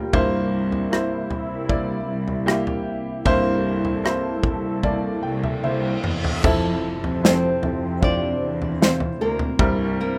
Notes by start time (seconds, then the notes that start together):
Already playing: D2 G3 A#3 F4 G4 A#4 F5 G5
0.13 C2 G2 C3 A#3 E4 C5, kick, floor tom
0.72 floor tom
0.91 A#3 E4 C5, cross-stick
1.31 C2, floor tom
1.69 A#3 E4 D5, kick, floor tom
2.09 C2
2.28 floor tom
2.46 A#3 E4 G4, cross-stick
2.67 floor tom
3.25 C2 G2 A#3 E4 A4 C5, kick, floor tom
3.85 floor tom
4.04 A#3 E4 C5, cross-stick
4.43 C2, kick, floor tom
4.83 A#3 E4 D5, kick, floor tom, reverse cymbal
5.23 C2 G5
5.44 E5, floor tom
5.64 C2 A#3 E4 C5 E5, high tom
6.04 E2, mid tom
6.24 floor tom
6.43 F2 C3 F3 C4 E4 A4 E5, kick, floor tom, crash, impact
7.04 F2, floor tom
7.23 F3 C4 E4 A4 C5, snare
7.62 F2 F3 C4 E4 A4, floor tom
8.01 C4 D4 E4 F4 C5 D5, kick, floor tom
8.42 E2
8.62 floor tom
8.81 C4 E4 F4 C5, snare
9.00 floor tom
9.20 D2 A#3 A#4
9.39 floor tom
9.59 C2 G2 C3 G3 C4 E4 A#4, kick, floor tom
10.01 A#3 A#4